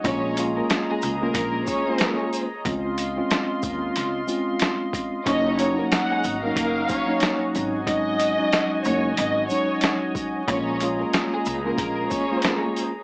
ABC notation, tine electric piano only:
X:1
M:4/4
L:1/16
Q:"Swing 16ths" 1/4=92
K:Bbm
V:1 name="Tine electric piano"
[A,B,DF]2 [A,B,DF]4- [A,B,DF] [A,B,DF]4 [A,B,DF]4 z | [A,CDF]3 [A,CDF]6 z [A,CDF]6 | [G,B,DE]2 [G,B,DE]4- [G,B,DE] [G,B,DE]4 [G,B,DE]3 [G,A,DE] z | [G,A,DE]3 [G,A,DE]6 z [G,A,DE]6 |
[A,B,DF]2 [A,B,DF]4- [A,B,DF] [A,B,DF]4 [A,B,DF]4 z |]